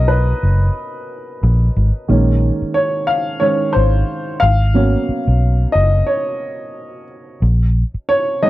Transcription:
Already playing: B1 F#3 A#3 B3 C#4 A#4 D#5
0.08 B4
0.43 F#1
1.43 A#1
1.77 G#1
2.08 A#1 D#3 G#3 A#3 C#4
2.62 muted fingered electric bass stroke
2.74 C#5
3.07 F5
3.40 D#3 G#3 C#4 C5 C#5
3.73 G#1 C5
4.40 G#1 F5
4.74 F#3 A#3 B3 C#4
5.09 muted fingered electric bass stroke
5.27 B1
5.72 F#1 D#5
6.07 C#5
7.42 A#1
7.94 muted fingered electric bass stroke
8.09 C#5
8.42 D#3 G#3 C4 C#4 D#5

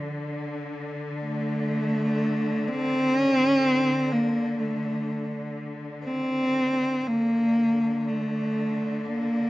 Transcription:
Already playing: D3
1.24 A3
2.68 C4
3.19 C#4
3.33 C4
3.47 C#4
3.61 C4
4.12 A#3
4.59 A3
6.05 C4
7.08 D3 A#3
8.09 A3
9.06 A#3

